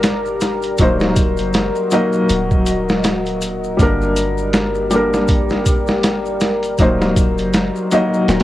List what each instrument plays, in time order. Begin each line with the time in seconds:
Already playing: 808-style bass G1, felt piano G3 A#3 D4 A#4, ambient pad G4 A#4 D5 A#5
0.03 snare, closed hi-hat, maracas
0.26 maracas
0.41 snare, closed hi-hat, maracas
0.62 closed hi-hat, maracas
0.78 808-style bass D#1, felt piano F#3 A#3 D#4, ambient pad F#4 D#5, kick, closed hi-hat, maracas
0.83 felt piano C5
1.00 snare, maracas
1.16 kick, closed hi-hat, maracas
1.37 808-style bass F#1, closed hi-hat, maracas
1.53 snare, closed hi-hat, maracas
1.75 maracas
1.91 felt piano F#3 A#3 D#4 D#5, closed hi-hat, maracas
2.13 maracas
2.29 808-style bass D#1, closed hi-hat, maracas
2.51 kick, maracas
2.66 closed hi-hat, maracas
2.89 snare, maracas
3.04 snare, closed hi-hat, maracas
3.26 closed hi-hat, maracas
3.41 closed hi-hat, maracas
3.64 maracas
3.77 808-style bass G1, felt piano G3 A#3 D4, ambient pad G4 D5, kick, closed hi-hat, maracas
3.83 felt piano A#4
4.02 maracas
4.16 closed hi-hat, maracas
4.38 maracas
4.53 snare, closed hi-hat, maracas
4.75 maracas
4.90 felt piano G3 A#3 D4, closed hi-hat, maracas
4.96 felt piano A#4
5.13 snare, maracas
5.28 kick, closed hi-hat, maracas
5.49 snare, maracas
5.66 kick, closed hi-hat, maracas
5.87 snare, maracas
6.03 snare, closed hi-hat, maracas
6.26 maracas
6.41 snare, closed hi-hat, maracas
6.63 closed hi-hat, maracas
6.78 808-style bass D#1, felt piano F#3 A#3 D#4, ambient pad F#4 D#5 A#5, kick, closed hi-hat, maracas
6.82 felt piano C5
7.02 snare, maracas
7.16 kick, closed hi-hat, maracas
7.38 808-style bass F#1, closed hi-hat, maracas
7.53 snare, closed hi-hat, maracas
7.76 maracas
7.91 felt piano F#3 A#3 D#4 D#5, closed hi-hat, maracas
8.14 maracas
8.28 808-style bass D#1, snare, closed hi-hat, maracas
8.40 closed hi-hat